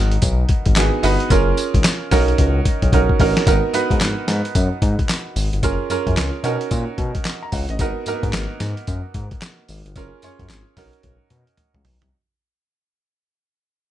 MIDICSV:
0, 0, Header, 1, 4, 480
1, 0, Start_track
1, 0, Tempo, 540541
1, 1157, Time_signature, 4, 2, 24, 8
1, 12351, End_track
2, 0, Start_track
2, 0, Title_t, "Grand piano"
2, 0, Program_c, 0, 0
2, 0, Control_c, 0, 64, 127
2, 0, Note_on_c, 0, 59, 89
2, 0, Note_on_c, 0, 63, 85
2, 0, Note_on_c, 0, 66, 81
2, 0, Note_on_c, 0, 70, 98
2, 679, Note_off_c, 0, 59, 0
2, 679, Note_on_c, 0, 59, 89
2, 684, Note_off_c, 0, 63, 0
2, 684, Note_on_c, 0, 63, 78
2, 686, Note_off_c, 0, 66, 0
2, 686, Note_on_c, 0, 66, 77
2, 690, Note_on_c, 0, 68, 94
2, 890, Note_off_c, 0, 59, 0
2, 893, Note_off_c, 0, 63, 0
2, 894, Note_off_c, 0, 66, 0
2, 896, Note_off_c, 0, 68, 0
2, 914, Note_on_c, 0, 59, 99
2, 918, Note_on_c, 0, 63, 85
2, 921, Note_on_c, 0, 66, 84
2, 927, Note_on_c, 0, 71, 104
2, 1128, Note_off_c, 0, 59, 0
2, 1130, Note_off_c, 0, 63, 0
2, 1132, Note_off_c, 0, 66, 0
2, 1135, Note_off_c, 0, 71, 0
2, 1159, Note_on_c, 0, 61, 95
2, 1160, Note_on_c, 0, 65, 85
2, 1165, Note_on_c, 0, 68, 84
2, 1168, Control_c, 0, 64, 0
2, 1169, Note_off_c, 0, 70, 0
2, 1169, Note_on_c, 0, 70, 97
2, 1337, Control_c, 0, 64, 127
2, 1862, Note_off_c, 0, 61, 0
2, 1872, Note_off_c, 0, 70, 0
2, 1876, Note_on_c, 0, 61, 99
2, 1878, Note_off_c, 0, 65, 0
2, 1879, Note_on_c, 0, 63, 91
2, 1881, Note_off_c, 0, 68, 0
2, 1883, Note_on_c, 0, 66, 86
2, 1885, Note_on_c, 0, 70, 103
2, 1890, Control_c, 0, 64, 0
2, 2026, Control_c, 0, 64, 127
2, 2514, Note_off_c, 0, 61, 0
2, 2516, Note_off_c, 0, 63, 0
2, 2518, Note_off_c, 0, 66, 0
2, 2519, Note_off_c, 0, 70, 0
2, 2599, Note_on_c, 0, 61, 87
2, 2605, Note_on_c, 0, 63, 76
2, 2608, Note_on_c, 0, 66, 77
2, 2612, Note_on_c, 0, 70, 86
2, 2811, Note_off_c, 0, 61, 0
2, 2813, Note_off_c, 0, 63, 0
2, 2815, Note_off_c, 0, 66, 0
2, 2817, Note_off_c, 0, 70, 0
2, 2840, Note_on_c, 0, 61, 89
2, 2843, Note_on_c, 0, 63, 82
2, 2846, Note_on_c, 0, 66, 82
2, 2850, Note_on_c, 0, 70, 105
2, 3051, Note_off_c, 0, 61, 0
2, 3053, Note_off_c, 0, 63, 0
2, 3054, Note_off_c, 0, 66, 0
2, 3056, Note_off_c, 0, 70, 0
2, 3077, Note_on_c, 0, 59, 84
2, 3083, Note_on_c, 0, 63, 80
2, 3084, Note_on_c, 0, 66, 74
2, 3088, Control_c, 0, 64, 0
2, 3090, Note_on_c, 0, 70, 96
2, 3227, Control_c, 0, 64, 127
2, 3290, Note_off_c, 0, 59, 0
2, 3293, Note_off_c, 0, 63, 0
2, 3293, Note_off_c, 0, 66, 0
2, 3296, Note_off_c, 0, 70, 0
2, 3316, Note_on_c, 0, 59, 98
2, 3322, Note_on_c, 0, 63, 80
2, 3324, Note_on_c, 0, 66, 82
2, 3328, Note_on_c, 0, 71, 98
2, 4155, Note_off_c, 0, 59, 0
2, 4158, Note_off_c, 0, 63, 0
2, 4158, Note_off_c, 0, 66, 0
2, 4160, Note_off_c, 0, 71, 0
2, 4998, Note_on_c, 0, 61, 90
2, 5004, Note_on_c, 0, 65, 81
2, 5005, Note_on_c, 0, 68, 80
2, 5008, Control_c, 0, 64, 0
2, 5010, Note_on_c, 0, 70, 93
2, 5154, Control_c, 0, 64, 127
2, 5210, Note_off_c, 0, 61, 0
2, 5213, Note_off_c, 0, 65, 0
2, 5214, Note_off_c, 0, 68, 0
2, 5216, Note_off_c, 0, 70, 0
2, 5240, Note_on_c, 0, 61, 93
2, 5243, Note_on_c, 0, 65, 82
2, 5248, Note_on_c, 0, 68, 83
2, 5250, Note_on_c, 0, 70, 100
2, 5703, Note_off_c, 0, 61, 0
2, 5716, Note_off_c, 0, 70, 0
2, 5716, Note_on_c, 0, 61, 95
2, 5719, Note_on_c, 0, 63, 80
2, 5720, Note_off_c, 0, 65, 0
2, 5723, Note_off_c, 0, 68, 0
2, 5725, Note_on_c, 0, 66, 88
2, 5729, Note_on_c, 0, 70, 97
2, 5730, Control_c, 0, 64, 0
2, 5890, Control_c, 0, 64, 127
2, 6555, Note_off_c, 0, 61, 0
2, 6556, Note_off_c, 0, 63, 0
2, 6559, Note_off_c, 0, 66, 0
2, 6561, Note_off_c, 0, 70, 0
2, 6594, Note_on_c, 0, 82, 71
2, 6676, Note_off_c, 0, 82, 0
2, 6687, Note_on_c, 0, 78, 78
2, 6825, Note_off_c, 0, 78, 0
2, 6839, Note_on_c, 0, 75, 72
2, 6926, Note_on_c, 0, 59, 86
2, 6929, Control_c, 0, 64, 0
2, 6932, Note_on_c, 0, 63, 83
2, 6934, Note_on_c, 0, 66, 80
2, 6937, Note_on_c, 0, 70, 97
2, 7061, Note_off_c, 0, 75, 0
2, 7074, Control_c, 0, 64, 127
2, 7134, Note_off_c, 0, 59, 0
2, 7137, Note_off_c, 0, 63, 0
2, 7138, Note_off_c, 0, 66, 0
2, 7140, Note_off_c, 0, 70, 0
2, 7167, Note_on_c, 0, 58, 74
2, 7171, Note_on_c, 0, 63, 84
2, 7173, Note_on_c, 0, 66, 82
2, 7176, Note_on_c, 0, 70, 103
2, 7224, Note_on_c, 0, 59, 92
2, 7234, Note_off_c, 0, 58, 0
2, 8002, Note_off_c, 0, 63, 0
2, 8003, Note_off_c, 0, 66, 0
2, 8005, Note_off_c, 0, 70, 0
2, 8028, Note_off_c, 0, 59, 0
2, 8845, Note_on_c, 0, 61, 93
2, 8849, Control_c, 0, 64, 0
2, 8851, Note_on_c, 0, 65, 80
2, 8852, Note_on_c, 0, 68, 80
2, 8856, Note_on_c, 0, 70, 96
2, 9008, Control_c, 0, 64, 127
2, 9054, Note_off_c, 0, 61, 0
2, 9057, Note_off_c, 0, 65, 0
2, 9057, Note_off_c, 0, 68, 0
2, 9059, Note_off_c, 0, 70, 0
2, 9084, Note_on_c, 0, 61, 88
2, 9088, Note_on_c, 0, 65, 83
2, 9092, Note_on_c, 0, 68, 81
2, 9095, Note_on_c, 0, 73, 102
2, 9547, Note_off_c, 0, 61, 0
2, 9561, Note_on_c, 0, 61, 90
2, 9562, Note_off_c, 0, 65, 0
2, 9564, Note_on_c, 0, 63, 83
2, 9565, Note_off_c, 0, 68, 0
2, 9566, Note_off_c, 0, 73, 0
2, 9568, Control_c, 0, 64, 0
2, 9570, Note_on_c, 0, 66, 84
2, 9571, Note_on_c, 0, 70, 107
2, 9712, Control_c, 0, 64, 127
2, 10397, Note_off_c, 0, 61, 0
2, 10399, Note_off_c, 0, 63, 0
2, 10401, Note_off_c, 0, 66, 0
2, 10402, Note_off_c, 0, 70, 0
2, 10769, Control_c, 0, 64, 0
2, 12351, End_track
3, 0, Start_track
3, 0, Title_t, "Analog synth bass"
3, 0, Program_c, 1, 38
3, 0, Note_on_c, 1, 32, 107
3, 155, Note_off_c, 1, 32, 0
3, 199, Note_on_c, 1, 35, 108
3, 395, Note_off_c, 1, 35, 0
3, 587, Note_on_c, 1, 32, 84
3, 660, Note_off_c, 1, 32, 0
3, 678, Note_on_c, 1, 32, 100
3, 801, Note_off_c, 1, 32, 0
3, 917, Note_on_c, 1, 31, 95
3, 1040, Note_off_c, 1, 31, 0
3, 1158, Note_on_c, 1, 30, 110
3, 1355, Note_off_c, 1, 30, 0
3, 1546, Note_on_c, 1, 32, 87
3, 1620, Note_off_c, 1, 32, 0
3, 1879, Note_on_c, 1, 35, 99
3, 2075, Note_off_c, 1, 35, 0
3, 2118, Note_on_c, 1, 37, 105
3, 2314, Note_off_c, 1, 37, 0
3, 2509, Note_on_c, 1, 35, 87
3, 2582, Note_off_c, 1, 35, 0
3, 2598, Note_on_c, 1, 35, 86
3, 2721, Note_off_c, 1, 35, 0
3, 2839, Note_on_c, 1, 33, 105
3, 2961, Note_off_c, 1, 33, 0
3, 3081, Note_on_c, 1, 32, 108
3, 3203, Note_off_c, 1, 32, 0
3, 3316, Note_on_c, 1, 44, 48
3, 3376, Note_off_c, 1, 44, 0
3, 3469, Note_on_c, 1, 44, 97
3, 3542, Note_off_c, 1, 44, 0
3, 3555, Note_on_c, 1, 32, 94
3, 3679, Note_off_c, 1, 32, 0
3, 3797, Note_on_c, 1, 44, 106
3, 3920, Note_off_c, 1, 44, 0
3, 4043, Note_on_c, 1, 42, 97
3, 4164, Note_off_c, 1, 42, 0
3, 4281, Note_on_c, 1, 44, 103
3, 4402, Note_off_c, 1, 44, 0
3, 4760, Note_on_c, 1, 32, 99
3, 4882, Note_off_c, 1, 32, 0
3, 4909, Note_on_c, 1, 31, 92
3, 4982, Note_off_c, 1, 31, 0
3, 5001, Note_on_c, 1, 30, 103
3, 5122, Note_off_c, 1, 30, 0
3, 5237, Note_on_c, 1, 42, 46
3, 5297, Note_off_c, 1, 42, 0
3, 5387, Note_on_c, 1, 42, 94
3, 5461, Note_off_c, 1, 42, 0
3, 5478, Note_on_c, 1, 37, 93
3, 5601, Note_off_c, 1, 37, 0
3, 5715, Note_on_c, 1, 47, 104
3, 5839, Note_off_c, 1, 47, 0
3, 5960, Note_on_c, 1, 46, 117
3, 6082, Note_off_c, 1, 46, 0
3, 6200, Note_on_c, 1, 47, 102
3, 6322, Note_off_c, 1, 47, 0
3, 6681, Note_on_c, 1, 37, 103
3, 6802, Note_off_c, 1, 37, 0
3, 6830, Note_on_c, 1, 33, 83
3, 6903, Note_off_c, 1, 33, 0
3, 6920, Note_on_c, 1, 32, 105
3, 7042, Note_off_c, 1, 32, 0
3, 7160, Note_on_c, 1, 44, 50
3, 7219, Note_off_c, 1, 44, 0
3, 7309, Note_on_c, 1, 44, 104
3, 7382, Note_off_c, 1, 44, 0
3, 7402, Note_on_c, 1, 32, 93
3, 7523, Note_off_c, 1, 32, 0
3, 7641, Note_on_c, 1, 44, 101
3, 7763, Note_off_c, 1, 44, 0
3, 7884, Note_on_c, 1, 42, 103
3, 8004, Note_off_c, 1, 42, 0
3, 8122, Note_on_c, 1, 44, 103
3, 8243, Note_off_c, 1, 44, 0
3, 8603, Note_on_c, 1, 32, 105
3, 8724, Note_off_c, 1, 32, 0
3, 8753, Note_on_c, 1, 31, 93
3, 8824, Note_off_c, 1, 31, 0
3, 8843, Note_on_c, 1, 30, 111
3, 8964, Note_off_c, 1, 30, 0
3, 9084, Note_on_c, 1, 42, 52
3, 9142, Note_off_c, 1, 42, 0
3, 9229, Note_on_c, 1, 42, 98
3, 9302, Note_off_c, 1, 42, 0
3, 9322, Note_on_c, 1, 32, 89
3, 9443, Note_off_c, 1, 32, 0
3, 9562, Note_on_c, 1, 35, 108
3, 9683, Note_off_c, 1, 35, 0
3, 9802, Note_on_c, 1, 35, 101
3, 9923, Note_off_c, 1, 35, 0
3, 10039, Note_on_c, 1, 47, 104
3, 10162, Note_off_c, 1, 47, 0
3, 10427, Note_on_c, 1, 37, 94
3, 10501, Note_off_c, 1, 37, 0
3, 10516, Note_on_c, 1, 35, 98
3, 10640, Note_off_c, 1, 35, 0
3, 10670, Note_on_c, 1, 36, 90
3, 10742, Note_off_c, 1, 36, 0
3, 12351, End_track
4, 0, Start_track
4, 0, Title_t, "Drums"
4, 102, Note_on_c, 9, 42, 52
4, 191, Note_off_c, 9, 42, 0
4, 194, Note_on_c, 9, 42, 89
4, 196, Note_on_c, 9, 54, 78
4, 198, Note_on_c, 9, 36, 94
4, 283, Note_off_c, 9, 42, 0
4, 284, Note_off_c, 9, 54, 0
4, 287, Note_off_c, 9, 36, 0
4, 432, Note_on_c, 9, 42, 77
4, 436, Note_on_c, 9, 36, 95
4, 521, Note_off_c, 9, 42, 0
4, 525, Note_off_c, 9, 36, 0
4, 582, Note_on_c, 9, 42, 52
4, 587, Note_on_c, 9, 36, 96
4, 671, Note_off_c, 9, 42, 0
4, 675, Note_on_c, 9, 54, 91
4, 676, Note_off_c, 9, 36, 0
4, 676, Note_on_c, 9, 38, 116
4, 676, Note_on_c, 9, 39, 99
4, 677, Note_on_c, 9, 42, 69
4, 764, Note_off_c, 9, 54, 0
4, 765, Note_off_c, 9, 38, 0
4, 765, Note_off_c, 9, 39, 0
4, 765, Note_off_c, 9, 42, 0
4, 918, Note_on_c, 9, 46, 75
4, 919, Note_on_c, 9, 54, 65
4, 1006, Note_off_c, 9, 46, 0
4, 1008, Note_off_c, 9, 54, 0
4, 1068, Note_on_c, 9, 42, 51
4, 1156, Note_off_c, 9, 42, 0
4, 1157, Note_on_c, 9, 36, 116
4, 1158, Note_on_c, 9, 42, 88
4, 1158, Note_on_c, 9, 54, 74
4, 1246, Note_off_c, 9, 36, 0
4, 1246, Note_off_c, 9, 42, 0
4, 1247, Note_off_c, 9, 54, 0
4, 1397, Note_on_c, 9, 54, 65
4, 1402, Note_on_c, 9, 42, 74
4, 1486, Note_off_c, 9, 54, 0
4, 1491, Note_off_c, 9, 42, 0
4, 1546, Note_on_c, 9, 36, 96
4, 1550, Note_on_c, 9, 42, 58
4, 1635, Note_off_c, 9, 36, 0
4, 1637, Note_off_c, 9, 42, 0
4, 1637, Note_on_c, 9, 38, 109
4, 1637, Note_on_c, 9, 39, 91
4, 1637, Note_on_c, 9, 42, 71
4, 1637, Note_on_c, 9, 54, 102
4, 1725, Note_off_c, 9, 39, 0
4, 1726, Note_off_c, 9, 38, 0
4, 1726, Note_off_c, 9, 42, 0
4, 1726, Note_off_c, 9, 54, 0
4, 1877, Note_on_c, 9, 46, 76
4, 1878, Note_on_c, 9, 38, 68
4, 1878, Note_on_c, 9, 54, 67
4, 1879, Note_on_c, 9, 36, 93
4, 1966, Note_off_c, 9, 46, 0
4, 1967, Note_off_c, 9, 36, 0
4, 1967, Note_off_c, 9, 38, 0
4, 1967, Note_off_c, 9, 54, 0
4, 2027, Note_on_c, 9, 42, 52
4, 2116, Note_off_c, 9, 42, 0
4, 2116, Note_on_c, 9, 42, 81
4, 2117, Note_on_c, 9, 36, 68
4, 2205, Note_off_c, 9, 42, 0
4, 2206, Note_off_c, 9, 36, 0
4, 2357, Note_on_c, 9, 36, 86
4, 2357, Note_on_c, 9, 42, 81
4, 2446, Note_off_c, 9, 36, 0
4, 2446, Note_off_c, 9, 42, 0
4, 2507, Note_on_c, 9, 42, 49
4, 2508, Note_on_c, 9, 36, 71
4, 2596, Note_off_c, 9, 42, 0
4, 2597, Note_off_c, 9, 36, 0
4, 2597, Note_on_c, 9, 36, 97
4, 2600, Note_on_c, 9, 42, 74
4, 2686, Note_off_c, 9, 36, 0
4, 2689, Note_off_c, 9, 42, 0
4, 2747, Note_on_c, 9, 36, 89
4, 2836, Note_off_c, 9, 36, 0
4, 2837, Note_on_c, 9, 36, 107
4, 2838, Note_on_c, 9, 46, 80
4, 2926, Note_off_c, 9, 36, 0
4, 2927, Note_off_c, 9, 46, 0
4, 2990, Note_on_c, 9, 42, 52
4, 2991, Note_on_c, 9, 38, 97
4, 3079, Note_off_c, 9, 42, 0
4, 3079, Note_on_c, 9, 36, 126
4, 3079, Note_on_c, 9, 42, 92
4, 3080, Note_off_c, 9, 38, 0
4, 3080, Note_on_c, 9, 54, 72
4, 3167, Note_off_c, 9, 36, 0
4, 3168, Note_off_c, 9, 42, 0
4, 3169, Note_off_c, 9, 54, 0
4, 3318, Note_on_c, 9, 54, 64
4, 3322, Note_on_c, 9, 42, 81
4, 3407, Note_off_c, 9, 54, 0
4, 3411, Note_off_c, 9, 42, 0
4, 3468, Note_on_c, 9, 36, 97
4, 3473, Note_on_c, 9, 42, 52
4, 3557, Note_off_c, 9, 36, 0
4, 3560, Note_off_c, 9, 42, 0
4, 3560, Note_on_c, 9, 38, 109
4, 3560, Note_on_c, 9, 39, 85
4, 3560, Note_on_c, 9, 42, 71
4, 3561, Note_on_c, 9, 54, 105
4, 3649, Note_off_c, 9, 38, 0
4, 3649, Note_off_c, 9, 39, 0
4, 3649, Note_off_c, 9, 42, 0
4, 3649, Note_off_c, 9, 54, 0
4, 3800, Note_on_c, 9, 42, 72
4, 3800, Note_on_c, 9, 54, 66
4, 3801, Note_on_c, 9, 38, 68
4, 3889, Note_off_c, 9, 42, 0
4, 3889, Note_off_c, 9, 54, 0
4, 3890, Note_off_c, 9, 38, 0
4, 3952, Note_on_c, 9, 42, 47
4, 4041, Note_off_c, 9, 42, 0
4, 4041, Note_on_c, 9, 42, 81
4, 4042, Note_on_c, 9, 36, 96
4, 4043, Note_on_c, 9, 54, 70
4, 4130, Note_off_c, 9, 42, 0
4, 4131, Note_off_c, 9, 36, 0
4, 4131, Note_off_c, 9, 54, 0
4, 4279, Note_on_c, 9, 36, 99
4, 4280, Note_on_c, 9, 42, 80
4, 4368, Note_off_c, 9, 36, 0
4, 4369, Note_off_c, 9, 42, 0
4, 4431, Note_on_c, 9, 36, 90
4, 4432, Note_on_c, 9, 42, 51
4, 4519, Note_off_c, 9, 36, 0
4, 4520, Note_off_c, 9, 42, 0
4, 4522, Note_on_c, 9, 54, 88
4, 4523, Note_on_c, 9, 38, 127
4, 4523, Note_on_c, 9, 39, 92
4, 4523, Note_on_c, 9, 42, 70
4, 4610, Note_off_c, 9, 54, 0
4, 4612, Note_off_c, 9, 38, 0
4, 4612, Note_off_c, 9, 39, 0
4, 4612, Note_off_c, 9, 42, 0
4, 4761, Note_on_c, 9, 46, 77
4, 4762, Note_on_c, 9, 54, 65
4, 4850, Note_off_c, 9, 46, 0
4, 4851, Note_off_c, 9, 54, 0
4, 4912, Note_on_c, 9, 42, 52
4, 4999, Note_off_c, 9, 42, 0
4, 4999, Note_on_c, 9, 36, 121
4, 4999, Note_on_c, 9, 42, 93
4, 4999, Note_on_c, 9, 54, 77
4, 5087, Note_off_c, 9, 42, 0
4, 5088, Note_off_c, 9, 36, 0
4, 5088, Note_off_c, 9, 54, 0
4, 5239, Note_on_c, 9, 54, 70
4, 5243, Note_on_c, 9, 42, 71
4, 5328, Note_off_c, 9, 54, 0
4, 5332, Note_off_c, 9, 42, 0
4, 5387, Note_on_c, 9, 36, 96
4, 5389, Note_on_c, 9, 42, 59
4, 5476, Note_off_c, 9, 36, 0
4, 5477, Note_off_c, 9, 42, 0
4, 5481, Note_on_c, 9, 39, 93
4, 5482, Note_on_c, 9, 38, 107
4, 5482, Note_on_c, 9, 42, 72
4, 5482, Note_on_c, 9, 54, 90
4, 5570, Note_off_c, 9, 38, 0
4, 5570, Note_off_c, 9, 39, 0
4, 5571, Note_off_c, 9, 42, 0
4, 5571, Note_off_c, 9, 54, 0
4, 5717, Note_on_c, 9, 42, 77
4, 5718, Note_on_c, 9, 54, 69
4, 5806, Note_off_c, 9, 42, 0
4, 5807, Note_off_c, 9, 54, 0
4, 5869, Note_on_c, 9, 42, 54
4, 5957, Note_off_c, 9, 42, 0
4, 5958, Note_on_c, 9, 42, 84
4, 5959, Note_on_c, 9, 54, 70
4, 5961, Note_on_c, 9, 36, 90
4, 6046, Note_off_c, 9, 42, 0
4, 6048, Note_off_c, 9, 54, 0
4, 6050, Note_off_c, 9, 36, 0
4, 6198, Note_on_c, 9, 42, 73
4, 6199, Note_on_c, 9, 36, 95
4, 6287, Note_off_c, 9, 42, 0
4, 6288, Note_off_c, 9, 36, 0
4, 6347, Note_on_c, 9, 42, 47
4, 6350, Note_on_c, 9, 36, 85
4, 6436, Note_off_c, 9, 42, 0
4, 6438, Note_on_c, 9, 54, 86
4, 6439, Note_off_c, 9, 36, 0
4, 6440, Note_on_c, 9, 38, 127
4, 6440, Note_on_c, 9, 39, 96
4, 6440, Note_on_c, 9, 42, 72
4, 6527, Note_off_c, 9, 54, 0
4, 6528, Note_off_c, 9, 38, 0
4, 6528, Note_off_c, 9, 39, 0
4, 6529, Note_off_c, 9, 42, 0
4, 6679, Note_on_c, 9, 46, 81
4, 6680, Note_on_c, 9, 54, 66
4, 6682, Note_on_c, 9, 36, 92
4, 6768, Note_off_c, 9, 46, 0
4, 6769, Note_off_c, 9, 54, 0
4, 6770, Note_off_c, 9, 36, 0
4, 6827, Note_on_c, 9, 42, 52
4, 6916, Note_off_c, 9, 42, 0
4, 6918, Note_on_c, 9, 42, 93
4, 6918, Note_on_c, 9, 54, 77
4, 6919, Note_on_c, 9, 36, 122
4, 7006, Note_off_c, 9, 42, 0
4, 7007, Note_off_c, 9, 54, 0
4, 7008, Note_off_c, 9, 36, 0
4, 7157, Note_on_c, 9, 54, 68
4, 7161, Note_on_c, 9, 42, 69
4, 7245, Note_off_c, 9, 54, 0
4, 7250, Note_off_c, 9, 42, 0
4, 7309, Note_on_c, 9, 36, 98
4, 7311, Note_on_c, 9, 42, 60
4, 7397, Note_off_c, 9, 36, 0
4, 7399, Note_on_c, 9, 38, 112
4, 7399, Note_on_c, 9, 39, 88
4, 7400, Note_off_c, 9, 42, 0
4, 7400, Note_on_c, 9, 42, 72
4, 7400, Note_on_c, 9, 54, 100
4, 7488, Note_off_c, 9, 38, 0
4, 7488, Note_off_c, 9, 39, 0
4, 7489, Note_off_c, 9, 42, 0
4, 7489, Note_off_c, 9, 54, 0
4, 7638, Note_on_c, 9, 42, 73
4, 7638, Note_on_c, 9, 54, 69
4, 7639, Note_on_c, 9, 38, 69
4, 7727, Note_off_c, 9, 42, 0
4, 7727, Note_off_c, 9, 54, 0
4, 7728, Note_off_c, 9, 38, 0
4, 7790, Note_on_c, 9, 42, 51
4, 7879, Note_off_c, 9, 42, 0
4, 7880, Note_on_c, 9, 42, 75
4, 7881, Note_on_c, 9, 54, 68
4, 7883, Note_on_c, 9, 36, 93
4, 7968, Note_off_c, 9, 42, 0
4, 7970, Note_off_c, 9, 54, 0
4, 7972, Note_off_c, 9, 36, 0
4, 8119, Note_on_c, 9, 42, 81
4, 8121, Note_on_c, 9, 36, 103
4, 8208, Note_off_c, 9, 42, 0
4, 8210, Note_off_c, 9, 36, 0
4, 8269, Note_on_c, 9, 42, 49
4, 8272, Note_on_c, 9, 36, 94
4, 8358, Note_off_c, 9, 42, 0
4, 8361, Note_off_c, 9, 36, 0
4, 8362, Note_on_c, 9, 54, 94
4, 8364, Note_on_c, 9, 38, 126
4, 8364, Note_on_c, 9, 39, 103
4, 8364, Note_on_c, 9, 42, 68
4, 8451, Note_off_c, 9, 54, 0
4, 8452, Note_off_c, 9, 39, 0
4, 8453, Note_off_c, 9, 38, 0
4, 8453, Note_off_c, 9, 42, 0
4, 8600, Note_on_c, 9, 46, 73
4, 8602, Note_on_c, 9, 54, 69
4, 8689, Note_off_c, 9, 46, 0
4, 8691, Note_off_c, 9, 54, 0
4, 8754, Note_on_c, 9, 42, 52
4, 8841, Note_off_c, 9, 42, 0
4, 8841, Note_on_c, 9, 42, 91
4, 8841, Note_on_c, 9, 54, 73
4, 8842, Note_on_c, 9, 36, 116
4, 8930, Note_off_c, 9, 42, 0
4, 8930, Note_off_c, 9, 54, 0
4, 8931, Note_off_c, 9, 36, 0
4, 9077, Note_on_c, 9, 54, 64
4, 9081, Note_on_c, 9, 42, 77
4, 9166, Note_off_c, 9, 54, 0
4, 9170, Note_off_c, 9, 42, 0
4, 9230, Note_on_c, 9, 36, 95
4, 9231, Note_on_c, 9, 42, 57
4, 9318, Note_off_c, 9, 36, 0
4, 9320, Note_off_c, 9, 42, 0
4, 9321, Note_on_c, 9, 38, 117
4, 9321, Note_on_c, 9, 39, 83
4, 9321, Note_on_c, 9, 42, 76
4, 9322, Note_on_c, 9, 54, 103
4, 9410, Note_off_c, 9, 38, 0
4, 9410, Note_off_c, 9, 39, 0
4, 9410, Note_off_c, 9, 42, 0
4, 9410, Note_off_c, 9, 54, 0
4, 9561, Note_on_c, 9, 46, 77
4, 9562, Note_on_c, 9, 36, 88
4, 9562, Note_on_c, 9, 38, 69
4, 9562, Note_on_c, 9, 54, 66
4, 9650, Note_off_c, 9, 46, 0
4, 9651, Note_off_c, 9, 36, 0
4, 9651, Note_off_c, 9, 38, 0
4, 9651, Note_off_c, 9, 54, 0
4, 9707, Note_on_c, 9, 42, 49
4, 9796, Note_off_c, 9, 42, 0
4, 9798, Note_on_c, 9, 42, 86
4, 9799, Note_on_c, 9, 48, 58
4, 9802, Note_on_c, 9, 36, 91
4, 9886, Note_off_c, 9, 42, 0
4, 9888, Note_off_c, 9, 48, 0
4, 9891, Note_off_c, 9, 36, 0
4, 10037, Note_on_c, 9, 42, 75
4, 10038, Note_on_c, 9, 47, 76
4, 10126, Note_off_c, 9, 42, 0
4, 10127, Note_off_c, 9, 47, 0
4, 10188, Note_on_c, 9, 42, 48
4, 10276, Note_off_c, 9, 42, 0
4, 10278, Note_on_c, 9, 45, 85
4, 10280, Note_on_c, 9, 42, 72
4, 10367, Note_off_c, 9, 45, 0
4, 10369, Note_off_c, 9, 42, 0
4, 10429, Note_on_c, 9, 45, 82
4, 10518, Note_off_c, 9, 45, 0
4, 10521, Note_on_c, 9, 43, 102
4, 10521, Note_on_c, 9, 46, 74
4, 10609, Note_off_c, 9, 46, 0
4, 10610, Note_off_c, 9, 43, 0
4, 10671, Note_on_c, 9, 42, 47
4, 10672, Note_on_c, 9, 43, 92
4, 10760, Note_off_c, 9, 42, 0
4, 10761, Note_off_c, 9, 43, 0
4, 12351, End_track
0, 0, End_of_file